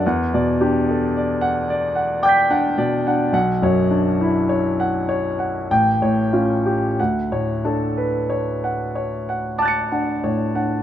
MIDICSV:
0, 0, Header, 1, 2, 480
1, 0, Start_track
1, 0, Key_signature, 2, "major"
1, 0, Tempo, 1100917
1, 14, Time_signature, 3, 2, 24, 8
1, 1454, Tempo, 1147228
1, 1934, Tempo, 1212121
1, 2414, Tempo, 1298701
1, 4311, End_track
2, 0, Start_track
2, 0, Title_t, "Grand piano"
2, 0, Program_c, 0, 0
2, 0, Control_c, 0, 64, 127
2, 21, Control_c, 0, 64, 0
2, 27, Note_on_c, 0, 40, 51
2, 28, Note_on_c, 0, 78, 41
2, 91, Control_c, 0, 64, 127
2, 146, Note_on_c, 0, 47, 41
2, 148, Note_on_c, 0, 74, 43
2, 212, Note_off_c, 0, 78, 0
2, 265, Note_on_c, 0, 67, 43
2, 268, Note_on_c, 0, 62, 43
2, 331, Note_off_c, 0, 47, 0
2, 332, Note_off_c, 0, 74, 0
2, 387, Note_on_c, 0, 69, 38
2, 450, Note_off_c, 0, 67, 0
2, 451, Note_off_c, 0, 62, 0
2, 499, Note_off_c, 0, 69, 0
2, 509, Note_on_c, 0, 74, 37
2, 616, Note_on_c, 0, 78, 45
2, 691, Note_off_c, 0, 74, 0
2, 741, Note_on_c, 0, 74, 44
2, 804, Note_off_c, 0, 78, 0
2, 852, Note_on_c, 0, 78, 39
2, 926, Note_off_c, 0, 74, 0
2, 971, Note_on_c, 0, 86, 34
2, 973, Note_on_c, 0, 79, 60
2, 983, Note_on_c, 0, 91, 34
2, 998, Note_on_c, 0, 95, 32
2, 1042, Note_off_c, 0, 78, 0
2, 1092, Note_on_c, 0, 62, 41
2, 1092, Note_on_c, 0, 78, 42
2, 1163, Note_off_c, 0, 79, 0
2, 1210, Note_on_c, 0, 47, 36
2, 1212, Note_on_c, 0, 74, 41
2, 1284, Note_off_c, 0, 62, 0
2, 1284, Note_off_c, 0, 78, 0
2, 1338, Note_on_c, 0, 78, 41
2, 1341, Note_on_c, 0, 62, 37
2, 1404, Note_off_c, 0, 47, 0
2, 1405, Note_off_c, 0, 74, 0
2, 1436, Note_off_c, 0, 86, 0
2, 1442, Note_off_c, 0, 40, 0
2, 1443, Note_off_c, 0, 91, 0
2, 1449, Note_off_c, 0, 78, 0
2, 1450, Note_off_c, 0, 95, 0
2, 1450, Note_on_c, 0, 35, 45
2, 1456, Note_on_c, 0, 78, 54
2, 1457, Note_off_c, 0, 62, 0
2, 1459, Control_c, 0, 64, 0
2, 1519, Control_c, 0, 64, 127
2, 1573, Note_on_c, 0, 42, 40
2, 1578, Note_on_c, 0, 73, 41
2, 1643, Note_off_c, 0, 78, 0
2, 1695, Note_on_c, 0, 62, 42
2, 1763, Note_off_c, 0, 42, 0
2, 1765, Note_off_c, 0, 73, 0
2, 1821, Note_on_c, 0, 64, 39
2, 1889, Note_off_c, 0, 62, 0
2, 1938, Note_off_c, 0, 64, 0
2, 1938, Note_on_c, 0, 73, 38
2, 2059, Note_on_c, 0, 78, 43
2, 2125, Note_off_c, 0, 73, 0
2, 2173, Note_on_c, 0, 73, 40
2, 2247, Note_off_c, 0, 78, 0
2, 2293, Note_on_c, 0, 78, 34
2, 2366, Note_off_c, 0, 73, 0
2, 2397, Note_off_c, 0, 35, 0
2, 2415, Note_off_c, 0, 78, 0
2, 2419, Note_on_c, 0, 33, 45
2, 2420, Note_on_c, 0, 79, 52
2, 2421, Control_c, 0, 64, 0
2, 2477, Control_c, 0, 64, 127
2, 2533, Note_on_c, 0, 45, 34
2, 2535, Note_on_c, 0, 73, 38
2, 2604, Note_off_c, 0, 79, 0
2, 2649, Note_on_c, 0, 65, 35
2, 2651, Note_on_c, 0, 61, 32
2, 2722, Note_off_c, 0, 45, 0
2, 2722, Note_off_c, 0, 73, 0
2, 2771, Note_on_c, 0, 67, 30
2, 2842, Note_off_c, 0, 65, 0
2, 2843, Note_off_c, 0, 61, 0
2, 2879, Note_off_c, 0, 33, 0
2, 2891, Note_off_c, 0, 67, 0
2, 2895, Note_on_c, 0, 78, 40
2, 2897, Note_on_c, 0, 38, 37
2, 2898, Control_c, 0, 64, 0
2, 2960, Control_c, 0, 64, 127
2, 3014, Note_on_c, 0, 45, 30
2, 3015, Note_on_c, 0, 73, 34
2, 3089, Note_off_c, 0, 78, 0
2, 3135, Note_on_c, 0, 62, 33
2, 3137, Note_on_c, 0, 69, 36
2, 3210, Note_off_c, 0, 45, 0
2, 3210, Note_off_c, 0, 73, 0
2, 3256, Note_on_c, 0, 71, 31
2, 3331, Note_off_c, 0, 62, 0
2, 3332, Note_off_c, 0, 69, 0
2, 3376, Note_on_c, 0, 73, 32
2, 3380, Note_off_c, 0, 71, 0
2, 3503, Note_on_c, 0, 78, 34
2, 3572, Note_off_c, 0, 73, 0
2, 3619, Note_on_c, 0, 73, 33
2, 3694, Note_off_c, 0, 78, 0
2, 3743, Note_on_c, 0, 78, 33
2, 3809, Note_off_c, 0, 73, 0
2, 3851, Note_on_c, 0, 86, 29
2, 3853, Note_on_c, 0, 81, 53
2, 3866, Note_on_c, 0, 90, 28
2, 3877, Note_on_c, 0, 93, 29
2, 3887, Note_on_c, 0, 97, 30
2, 3929, Note_off_c, 0, 78, 0
2, 3974, Note_on_c, 0, 78, 32
2, 3976, Note_on_c, 0, 62, 33
2, 4044, Note_off_c, 0, 81, 0
2, 4093, Note_on_c, 0, 45, 29
2, 4093, Note_on_c, 0, 73, 31
2, 4167, Note_off_c, 0, 62, 0
2, 4167, Note_off_c, 0, 78, 0
2, 4210, Note_on_c, 0, 62, 30
2, 4210, Note_on_c, 0, 78, 32
2, 4287, Note_off_c, 0, 45, 0
2, 4287, Note_off_c, 0, 73, 0
2, 4311, Note_off_c, 0, 38, 0
2, 4311, Note_off_c, 0, 62, 0
2, 4311, Note_off_c, 0, 78, 0
2, 4311, Note_off_c, 0, 86, 0
2, 4311, Note_off_c, 0, 90, 0
2, 4311, Note_off_c, 0, 93, 0
2, 4311, Note_off_c, 0, 97, 0
2, 4311, End_track
0, 0, End_of_file